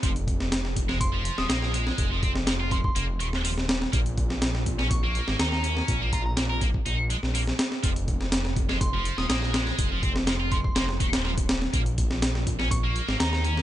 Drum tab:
HH |xxx-x-x-x-x-x-x-|x-x-x-x-x-x-o-x-|xxx-x-x-x-x-x-x-|x-x-x-x-x-x-o-x-|
SD |---ooo-o---ooo-o|---oo------o-ooo|---ooo-o---ooo-o|----o------o-ooo|
BD |o-o---o-o-------|o-o---oo--------|o-o---o-o-------|o-o---oo--------|

HH |xxx-x-x-x-x-x-x-|x-x-x-x-x-xx-xx-|xxx-x-x-x-x-x-x-|
SD |---ooo-o---ooooo|---oo---oo-oo-oo|---ooo-o---ooo-o|
BD |o-o---o-o-------|o-o---oo--o--o--|o-o---o-o-------|